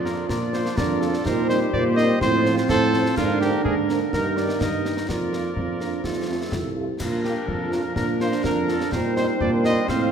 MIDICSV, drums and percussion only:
0, 0, Header, 1, 2, 480
1, 0, Start_track
1, 0, Key_signature, -2, "major"
1, 0, Tempo, 479233
1, 296, Time_signature, 2, 2, 24, 8
1, 10133, End_track
2, 0, Start_track
2, 0, Title_t, "Drums"
2, 55, Note_on_c, 9, 38, 48
2, 155, Note_off_c, 9, 38, 0
2, 295, Note_on_c, 9, 35, 61
2, 295, Note_on_c, 9, 38, 63
2, 395, Note_off_c, 9, 35, 0
2, 395, Note_off_c, 9, 38, 0
2, 534, Note_on_c, 9, 38, 50
2, 634, Note_off_c, 9, 38, 0
2, 658, Note_on_c, 9, 38, 55
2, 758, Note_off_c, 9, 38, 0
2, 777, Note_on_c, 9, 35, 77
2, 777, Note_on_c, 9, 38, 71
2, 878, Note_off_c, 9, 35, 0
2, 878, Note_off_c, 9, 38, 0
2, 1016, Note_on_c, 9, 38, 47
2, 1116, Note_off_c, 9, 38, 0
2, 1137, Note_on_c, 9, 38, 46
2, 1237, Note_off_c, 9, 38, 0
2, 1257, Note_on_c, 9, 35, 76
2, 1257, Note_on_c, 9, 38, 60
2, 1358, Note_off_c, 9, 35, 0
2, 1358, Note_off_c, 9, 38, 0
2, 1498, Note_on_c, 9, 38, 48
2, 1598, Note_off_c, 9, 38, 0
2, 1737, Note_on_c, 9, 35, 71
2, 1837, Note_off_c, 9, 35, 0
2, 1978, Note_on_c, 9, 38, 50
2, 2079, Note_off_c, 9, 38, 0
2, 2217, Note_on_c, 9, 35, 69
2, 2217, Note_on_c, 9, 38, 63
2, 2317, Note_off_c, 9, 35, 0
2, 2317, Note_off_c, 9, 38, 0
2, 2457, Note_on_c, 9, 38, 50
2, 2557, Note_off_c, 9, 38, 0
2, 2579, Note_on_c, 9, 38, 56
2, 2679, Note_off_c, 9, 38, 0
2, 2697, Note_on_c, 9, 35, 77
2, 2697, Note_on_c, 9, 38, 73
2, 2797, Note_off_c, 9, 35, 0
2, 2797, Note_off_c, 9, 38, 0
2, 2938, Note_on_c, 9, 38, 44
2, 3039, Note_off_c, 9, 38, 0
2, 3059, Note_on_c, 9, 38, 52
2, 3159, Note_off_c, 9, 38, 0
2, 3178, Note_on_c, 9, 35, 66
2, 3178, Note_on_c, 9, 38, 62
2, 3178, Note_on_c, 9, 49, 25
2, 3278, Note_off_c, 9, 35, 0
2, 3278, Note_off_c, 9, 38, 0
2, 3278, Note_off_c, 9, 49, 0
2, 3419, Note_on_c, 9, 38, 49
2, 3519, Note_off_c, 9, 38, 0
2, 3658, Note_on_c, 9, 35, 73
2, 3758, Note_off_c, 9, 35, 0
2, 3897, Note_on_c, 9, 38, 48
2, 3997, Note_off_c, 9, 38, 0
2, 4138, Note_on_c, 9, 35, 63
2, 4138, Note_on_c, 9, 38, 58
2, 4238, Note_off_c, 9, 35, 0
2, 4238, Note_off_c, 9, 38, 0
2, 4377, Note_on_c, 9, 38, 48
2, 4478, Note_off_c, 9, 38, 0
2, 4497, Note_on_c, 9, 38, 51
2, 4597, Note_off_c, 9, 38, 0
2, 4616, Note_on_c, 9, 35, 68
2, 4616, Note_on_c, 9, 38, 69
2, 4717, Note_off_c, 9, 35, 0
2, 4717, Note_off_c, 9, 38, 0
2, 4859, Note_on_c, 9, 38, 49
2, 4959, Note_off_c, 9, 38, 0
2, 4980, Note_on_c, 9, 38, 52
2, 5080, Note_off_c, 9, 38, 0
2, 5097, Note_on_c, 9, 35, 62
2, 5097, Note_on_c, 9, 38, 64
2, 5198, Note_off_c, 9, 35, 0
2, 5198, Note_off_c, 9, 38, 0
2, 5338, Note_on_c, 9, 38, 46
2, 5438, Note_off_c, 9, 38, 0
2, 5575, Note_on_c, 9, 35, 68
2, 5675, Note_off_c, 9, 35, 0
2, 5814, Note_on_c, 9, 38, 40
2, 5914, Note_off_c, 9, 38, 0
2, 6050, Note_on_c, 9, 35, 58
2, 6050, Note_on_c, 9, 38, 49
2, 6151, Note_off_c, 9, 35, 0
2, 6151, Note_off_c, 9, 38, 0
2, 6532, Note_on_c, 9, 35, 63
2, 6532, Note_on_c, 9, 38, 64
2, 6632, Note_off_c, 9, 35, 0
2, 6632, Note_off_c, 9, 38, 0
2, 7012, Note_on_c, 9, 35, 66
2, 7012, Note_on_c, 9, 38, 58
2, 7012, Note_on_c, 9, 49, 36
2, 7112, Note_off_c, 9, 35, 0
2, 7112, Note_off_c, 9, 38, 0
2, 7112, Note_off_c, 9, 49, 0
2, 7256, Note_on_c, 9, 38, 43
2, 7356, Note_off_c, 9, 38, 0
2, 7494, Note_on_c, 9, 35, 71
2, 7594, Note_off_c, 9, 35, 0
2, 7734, Note_on_c, 9, 38, 48
2, 7834, Note_off_c, 9, 38, 0
2, 7973, Note_on_c, 9, 35, 69
2, 7973, Note_on_c, 9, 38, 55
2, 8074, Note_off_c, 9, 35, 0
2, 8074, Note_off_c, 9, 38, 0
2, 8215, Note_on_c, 9, 38, 45
2, 8316, Note_off_c, 9, 38, 0
2, 8333, Note_on_c, 9, 38, 52
2, 8433, Note_off_c, 9, 38, 0
2, 8455, Note_on_c, 9, 35, 74
2, 8455, Note_on_c, 9, 38, 71
2, 8555, Note_off_c, 9, 35, 0
2, 8555, Note_off_c, 9, 38, 0
2, 8697, Note_on_c, 9, 38, 45
2, 8797, Note_off_c, 9, 38, 0
2, 8818, Note_on_c, 9, 38, 53
2, 8918, Note_off_c, 9, 38, 0
2, 8936, Note_on_c, 9, 35, 68
2, 8936, Note_on_c, 9, 38, 57
2, 9036, Note_off_c, 9, 35, 0
2, 9036, Note_off_c, 9, 38, 0
2, 9179, Note_on_c, 9, 38, 51
2, 9279, Note_off_c, 9, 38, 0
2, 9420, Note_on_c, 9, 35, 76
2, 9520, Note_off_c, 9, 35, 0
2, 9659, Note_on_c, 9, 38, 53
2, 9759, Note_off_c, 9, 38, 0
2, 9900, Note_on_c, 9, 35, 64
2, 9900, Note_on_c, 9, 38, 63
2, 10000, Note_off_c, 9, 35, 0
2, 10000, Note_off_c, 9, 38, 0
2, 10133, End_track
0, 0, End_of_file